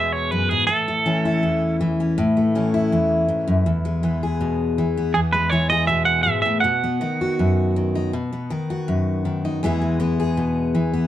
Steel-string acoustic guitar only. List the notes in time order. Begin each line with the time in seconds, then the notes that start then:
Already playing: E2 B2 E3 G#3 B3 G#4
0.32 F#2
0.51 G#2
0.69 A2
0.88 A3
1.06 E3 C#4
1.25 E4
1.43 E2
1.81 E3
2.00 C#4
2.18 A2
2.37 A3
2.55 E3 C#4
2.74 E4
2.92 E2
3.29 G#2
3.48 F#2
3.66 E2
3.85 G#3
4.03 E3 B3
4.23 G#4
4.41 B2
4.78 E3
4.97 B3
5.15 E2
5.34 G#3
5.52 E3 B3
5.72 G#4
5.89 B2
6.26 G#2
6.45 A2
6.64 B2
6.84 B3
7.01 D#3 D#4
7.21 F#4
7.39 F#2
7.76 D#3
7.95 D#4
8.13 B2
8.33 B3
8.50 D#3 D#4
8.70 F#4
8.88 F#2
9.25 D#3
9.45 D#4
9.63 E2 E3 G#3 B3 G#4
9.82 G#3
10.00 E3 B3
10.20 G#4
10.37 B2
10.75 E3
10.93 B3